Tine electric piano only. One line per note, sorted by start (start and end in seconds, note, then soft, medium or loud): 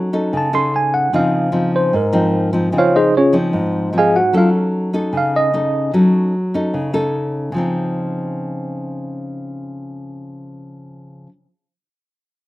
0.37 0.54 A5 medium
0.55 0.73 C6 medium
0.76 0.93 G#5 medium
0.94 1.12 F#5 medium
1.16 1.70 F5 medium
1.76 1.94 C5 medium
1.96 2.50 A#4 medium
2.78 2.95 F4 medium
2.78 2.95 C5 medium
2.78 2.95 C#5 medium
2.78 2.95 F5 medium
2.96 3.14 D#4 medium
2.96 3.14 G#4 medium
2.96 3.14 C5 medium
2.96 3.14 D#5 medium
3.17 3.35 C#4 medium
3.17 3.35 F4 medium
3.17 3.35 G#4 medium
3.17 3.34 C#5 medium
3.98 4.15 G#4 medium
3.98 4.15 D#5 medium
3.98 4.15 F5 medium
3.98 4.15 G#5 medium
4.16 4.34 F#4 medium
4.16 4.34 F#5 medium
4.38 4.49 F4 medium
4.38 4.48 F5 medium
5.17 5.35 F5 medium
5.36 5.91 D#5 medium